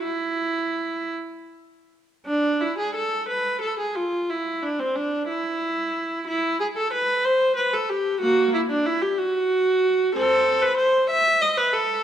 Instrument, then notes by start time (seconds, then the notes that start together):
viola
0.03 E4
2.26 D4
2.61 E4
2.78 G#4
2.95 A4
3.29 B4
3.62 A4
3.79 G#4
3.95 F4
4.30 E4
4.63 D4
4.79 C4
4.96 D4
5.28 E4
6.28 E4
6.60 G#4
6.77 A4
6.93 B4
7.25 C5
7.56 B4
7.74 A4
7.89 G4
8.21 A#3 F#4
8.54 E4
8.70 D4
8.86 E4
9.01 G4
9.18 F#4
10.15 C4 A4
10.62 B4
10.77 C5
11.10 E5
11.41 D#5
11.58 B4
11.74 A4